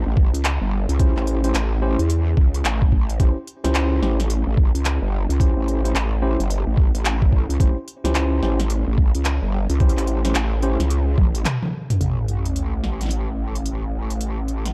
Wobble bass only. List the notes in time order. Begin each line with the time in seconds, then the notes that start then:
0.06 A1
0.33 C#2
0.61 G1
0.89 C#2
1.16 A1
1.54 A1
1.99 E2
2.37 C#2
2.64 A1
2.92 A1
3.19 A1
3.64 C#2
4.02 A1
4.47 A1
4.74 C#2
5.02 G1
5.29 C#2
5.57 A1
5.94 A1
6.39 G1
6.67 A1
6.95 A1
7.49 C#2
7.60 A1
8.04 C#2
8.43 A1
8.87 A1
9.15 C#2
9.42 G1
9.70 C#2
9.97 A1
10.35 A1
10.80 C#2
11.18 A1
12.00 A1